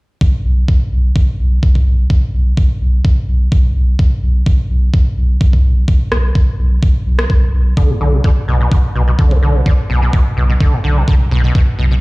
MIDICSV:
0, 0, Header, 1, 4, 480
1, 0, Start_track
1, 0, Key_signature, 2, "minor"
1, 0, Tempo, 472441
1, 215, Time_signature, 4, 2, 24, 8
1, 12199, End_track
2, 0, Start_track
2, 0, Title_t, "Acid bass"
2, 0, Program_c, 0, 38
2, 7895, Note_on_c, 0, 50, 79
2, 8022, Note_on_c, 0, 45, 96
2, 8037, Note_off_c, 0, 50, 0
2, 8085, Note_off_c, 0, 45, 0
2, 8136, Note_on_c, 0, 50, 77
2, 8264, Note_on_c, 0, 47, 74
2, 8279, Note_off_c, 0, 50, 0
2, 8325, Note_off_c, 0, 47, 0
2, 8377, Note_on_c, 0, 50, 95
2, 8446, Note_off_c, 0, 50, 0
2, 8616, Note_on_c, 0, 47, 100
2, 8720, Note_off_c, 0, 47, 0
2, 8743, Note_on_c, 0, 47, 72
2, 8836, Note_off_c, 0, 47, 0
2, 8856, Note_on_c, 0, 47, 74
2, 8925, Note_off_c, 0, 47, 0
2, 9096, Note_on_c, 0, 47, 73
2, 9166, Note_off_c, 0, 47, 0
2, 9222, Note_on_c, 0, 47, 71
2, 9260, Note_off_c, 0, 47, 0
2, 9336, Note_on_c, 0, 50, 84
2, 9462, Note_on_c, 0, 45, 98
2, 9477, Note_off_c, 0, 50, 0
2, 9524, Note_off_c, 0, 45, 0
2, 9576, Note_on_c, 0, 50, 74
2, 9702, Note_on_c, 0, 47, 75
2, 9717, Note_off_c, 0, 50, 0
2, 9764, Note_off_c, 0, 47, 0
2, 9815, Note_on_c, 0, 50, 98
2, 9885, Note_off_c, 0, 50, 0
2, 10056, Note_on_c, 0, 47, 101
2, 10160, Note_off_c, 0, 47, 0
2, 10182, Note_on_c, 0, 47, 74
2, 10276, Note_off_c, 0, 47, 0
2, 10296, Note_on_c, 0, 47, 77
2, 10365, Note_off_c, 0, 47, 0
2, 10535, Note_on_c, 0, 47, 75
2, 10605, Note_off_c, 0, 47, 0
2, 10663, Note_on_c, 0, 47, 73
2, 10700, Note_off_c, 0, 47, 0
2, 10775, Note_on_c, 0, 50, 72
2, 10900, Note_on_c, 0, 45, 102
2, 10915, Note_off_c, 0, 50, 0
2, 10964, Note_off_c, 0, 45, 0
2, 11014, Note_on_c, 0, 50, 76
2, 11142, Note_on_c, 0, 47, 75
2, 11157, Note_off_c, 0, 50, 0
2, 11204, Note_off_c, 0, 47, 0
2, 11255, Note_on_c, 0, 50, 94
2, 11325, Note_off_c, 0, 50, 0
2, 11495, Note_on_c, 0, 47, 96
2, 11600, Note_off_c, 0, 47, 0
2, 11623, Note_on_c, 0, 47, 78
2, 11716, Note_off_c, 0, 47, 0
2, 11736, Note_on_c, 0, 47, 79
2, 11805, Note_off_c, 0, 47, 0
2, 11975, Note_on_c, 0, 47, 77
2, 12045, Note_off_c, 0, 47, 0
2, 12102, Note_on_c, 0, 47, 74
2, 12139, Note_off_c, 0, 47, 0
2, 12199, End_track
3, 0, Start_track
3, 0, Title_t, "Sub bass"
3, 0, Program_c, 1, 38
3, 454, Note_on_c, 1, 35, 95
3, 651, Note_off_c, 1, 35, 0
3, 934, Note_on_c, 1, 35, 89
3, 1131, Note_off_c, 1, 35, 0
3, 1415, Note_on_c, 1, 35, 86
3, 1612, Note_off_c, 1, 35, 0
3, 1654, Note_on_c, 1, 35, 75
3, 1852, Note_off_c, 1, 35, 0
3, 1894, Note_on_c, 1, 35, 79
3, 2091, Note_off_c, 1, 35, 0
3, 2373, Note_on_c, 1, 35, 95
3, 2571, Note_off_c, 1, 35, 0
3, 2854, Note_on_c, 1, 35, 92
3, 3051, Note_off_c, 1, 35, 0
3, 3333, Note_on_c, 1, 35, 87
3, 3531, Note_off_c, 1, 35, 0
3, 3575, Note_on_c, 1, 35, 79
3, 3772, Note_off_c, 1, 35, 0
3, 3814, Note_on_c, 1, 35, 76
3, 4012, Note_off_c, 1, 35, 0
3, 4294, Note_on_c, 1, 35, 100
3, 4491, Note_off_c, 1, 35, 0
3, 4774, Note_on_c, 1, 35, 96
3, 4971, Note_off_c, 1, 35, 0
3, 5254, Note_on_c, 1, 35, 83
3, 5452, Note_off_c, 1, 35, 0
3, 5495, Note_on_c, 1, 35, 80
3, 5692, Note_off_c, 1, 35, 0
3, 5734, Note_on_c, 1, 35, 83
3, 5932, Note_off_c, 1, 35, 0
3, 6214, Note_on_c, 1, 35, 96
3, 6412, Note_off_c, 1, 35, 0
3, 6695, Note_on_c, 1, 35, 94
3, 6892, Note_off_c, 1, 35, 0
3, 7174, Note_on_c, 1, 35, 99
3, 7371, Note_off_c, 1, 35, 0
3, 7415, Note_on_c, 1, 35, 94
3, 7612, Note_off_c, 1, 35, 0
3, 7653, Note_on_c, 1, 35, 94
3, 7851, Note_off_c, 1, 35, 0
3, 8133, Note_on_c, 1, 35, 98
3, 8331, Note_off_c, 1, 35, 0
3, 8614, Note_on_c, 1, 35, 94
3, 8811, Note_off_c, 1, 35, 0
3, 9095, Note_on_c, 1, 35, 89
3, 9292, Note_off_c, 1, 35, 0
3, 9335, Note_on_c, 1, 35, 82
3, 9532, Note_off_c, 1, 35, 0
3, 9575, Note_on_c, 1, 35, 77
3, 9772, Note_off_c, 1, 35, 0
3, 10055, Note_on_c, 1, 35, 98
3, 10252, Note_off_c, 1, 35, 0
3, 10535, Note_on_c, 1, 35, 96
3, 10732, Note_off_c, 1, 35, 0
3, 11016, Note_on_c, 1, 35, 87
3, 11212, Note_off_c, 1, 35, 0
3, 11255, Note_on_c, 1, 35, 80
3, 11452, Note_off_c, 1, 35, 0
3, 11495, Note_on_c, 1, 35, 79
3, 11692, Note_off_c, 1, 35, 0
3, 11975, Note_on_c, 1, 35, 99
3, 12172, Note_off_c, 1, 35, 0
3, 12199, End_track
4, 0, Start_track
4, 0, Title_t, "Drums"
4, 215, Note_on_c, 9, 36, 120
4, 316, Note_off_c, 9, 36, 0
4, 695, Note_on_c, 9, 36, 107
4, 796, Note_off_c, 9, 36, 0
4, 1175, Note_on_c, 9, 36, 112
4, 1276, Note_off_c, 9, 36, 0
4, 1655, Note_on_c, 9, 36, 106
4, 1756, Note_off_c, 9, 36, 0
4, 1781, Note_on_c, 9, 36, 56
4, 1883, Note_off_c, 9, 36, 0
4, 2134, Note_on_c, 9, 36, 122
4, 2236, Note_off_c, 9, 36, 0
4, 2615, Note_on_c, 9, 36, 109
4, 2716, Note_off_c, 9, 36, 0
4, 3095, Note_on_c, 9, 36, 119
4, 3197, Note_off_c, 9, 36, 0
4, 3575, Note_on_c, 9, 36, 115
4, 3677, Note_off_c, 9, 36, 0
4, 4055, Note_on_c, 9, 36, 118
4, 4157, Note_off_c, 9, 36, 0
4, 4535, Note_on_c, 9, 36, 114
4, 4637, Note_off_c, 9, 36, 0
4, 5015, Note_on_c, 9, 36, 116
4, 5117, Note_off_c, 9, 36, 0
4, 5495, Note_on_c, 9, 36, 114
4, 5597, Note_off_c, 9, 36, 0
4, 5622, Note_on_c, 9, 36, 61
4, 5723, Note_off_c, 9, 36, 0
4, 5975, Note_on_c, 9, 36, 121
4, 6076, Note_off_c, 9, 36, 0
4, 6215, Note_on_c, 9, 37, 76
4, 6317, Note_off_c, 9, 37, 0
4, 6455, Note_on_c, 9, 36, 114
4, 6556, Note_off_c, 9, 36, 0
4, 6935, Note_on_c, 9, 36, 118
4, 7037, Note_off_c, 9, 36, 0
4, 7301, Note_on_c, 9, 37, 84
4, 7403, Note_off_c, 9, 37, 0
4, 7415, Note_on_c, 9, 36, 110
4, 7517, Note_off_c, 9, 36, 0
4, 7895, Note_on_c, 9, 36, 119
4, 7996, Note_off_c, 9, 36, 0
4, 8374, Note_on_c, 9, 36, 111
4, 8476, Note_off_c, 9, 36, 0
4, 8855, Note_on_c, 9, 36, 109
4, 8956, Note_off_c, 9, 36, 0
4, 9335, Note_on_c, 9, 36, 114
4, 9436, Note_off_c, 9, 36, 0
4, 9461, Note_on_c, 9, 36, 58
4, 9563, Note_off_c, 9, 36, 0
4, 9815, Note_on_c, 9, 36, 118
4, 9917, Note_off_c, 9, 36, 0
4, 10295, Note_on_c, 9, 36, 108
4, 10397, Note_off_c, 9, 36, 0
4, 10775, Note_on_c, 9, 36, 111
4, 10876, Note_off_c, 9, 36, 0
4, 11255, Note_on_c, 9, 36, 101
4, 11357, Note_off_c, 9, 36, 0
4, 11735, Note_on_c, 9, 36, 112
4, 11837, Note_off_c, 9, 36, 0
4, 12199, End_track
0, 0, End_of_file